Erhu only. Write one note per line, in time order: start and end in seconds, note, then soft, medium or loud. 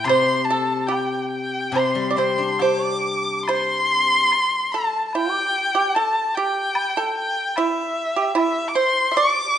0.04 0.46 C6 loud
0.45 0.89 A5 medium
0.87 1.30 G5 medium
1.31 1.75 G5 medium
1.73 2.15 C6 medium
2.16 2.63 C6 medium
2.62 3.45 D6 medium
3.46 4.74 C6 loud
4.72 5.06 A5 medium
5.08 5.17 A5 medium
5.15 5.97 G5 loud
5.95 6.36 A5 medium
6.35 7.16 G5 loud
7.17 7.58 G5 loud
7.57 8.36 E5 medium
8.37 8.70 E5 medium
8.68 8.76 D6 medium
8.75 9.17 C6 loud
9.16 9.58 D6 loud